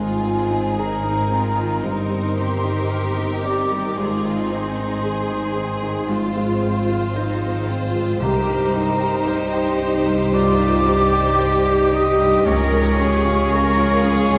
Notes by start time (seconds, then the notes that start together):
Already playing: G#1 G#2 D#3 C4 D#4 F4 G#4 C5 G#5
0.23 C4
0.50 D#4
0.77 D#4 G#4 A#4 A#5
1.04 D#4
1.31 C4 F4
1.57 D#3
1.83 G1 G2 D#4 A#4 C5 C6
2.09 G3
2.37 C4 G4
2.64 D#4
2.90 A#4
3.18 D#4
3.44 C4 D5 D6
3.71 G3
3.98 G#1 G#2 F4 G#4 C5 C6
4.25 D#3
4.52 C4 D#4
4.78 D#4
5.04 G#4
5.30 D#4
5.56 C4
5.82 D#3
6.09 G#2 F3 C4 F4 C5
6.36 G#3
6.63 C4
6.90 F4
7.16 D#4 C5
7.43 F4
7.69 C4 F4
7.95 G#3
8.20 C2 C3 G3 D#4 G4 A#4 A#5
8.47 G2
8.73 D#4
9.00 G4
9.27 C5 C6
9.53 G4
9.80 D#4
10.06 G2
10.33 C2 F4 D5 D6
10.59 D#4
10.86 G2 G4
11.13 G4
11.39 C5
11.65 G4
11.92 D#4 D#5 D#6
12.18 G2
12.45 C#2 F3 C#4 G#4 A#4 C#5 C#6
12.72 G#2
12.99 C#4 G#4
13.25 F4
13.51 F4 G#4 A#4
13.77 F4
14.02 C#4 G#4
14.29 G#2